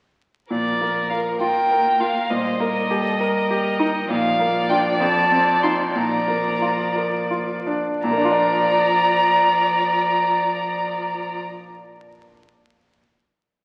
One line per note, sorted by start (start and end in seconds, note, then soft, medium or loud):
0.50 2.26 A#2 soft
0.50 1.37 F3 soft
0.50 1.37 A#4 soft
0.50 1.07 D5 medium
0.81 1.29 A#3 soft
1.09 1.59 A#4 soft
1.09 1.17 F5 medium
1.40 2.32 A#3 soft
1.40 1.88 F4 soft
1.40 2.32 A#4 soft
1.40 2.02 G5 medium
1.71 2.18 A#4 soft
2.00 2.30 F4 soft
2.00 2.32 F5 medium
2.30 4.05 A#2 soft
2.30 4.09 G3 medium
2.30 2.62 C5 soft
2.30 4.09 D#5 medium
2.60 3.08 A#3 soft
2.60 2.91 A#4 soft
2.90 3.38 G4 soft
2.90 3.21 A4 soft
3.20 4.10 A#4 medium
3.20 3.68 A#4 medium
3.50 3.97 G4 soft
3.80 4.09 D#4 soft
4.09 4.98 A#2 medium
4.09 5.92 F3 medium
4.09 5.95 D5 medium
4.09 4.68 F5 medium
4.39 4.88 A#3 soft
4.69 4.97 D4 soft
4.69 4.97 F4 soft
4.69 4.77 G5 medium
5.00 5.92 F2 medium
5.00 5.62 A5 medium
5.32 5.82 C4 soft
5.62 5.92 D#4 soft
5.62 5.92 F4 soft
5.62 5.71 C6 medium
5.95 7.99 A#2 soft
5.95 7.75 F3 medium
5.95 7.75 D5 soft
5.95 6.94 A#5 medium
6.28 6.82 A#3 soft
6.62 7.17 F4 soft
6.96 7.52 A#4 soft
7.31 7.88 F4 soft
7.67 8.03 D4 soft
8.03 11.39 A#2 medium
8.03 11.39 F3 medium
8.03 11.38 D5 medium
8.03 11.39 A#5 medium
8.11 11.46 A#3 soft
8.18 11.53 D4 medium
8.25 11.60 F4 medium
8.32 11.67 D5 soft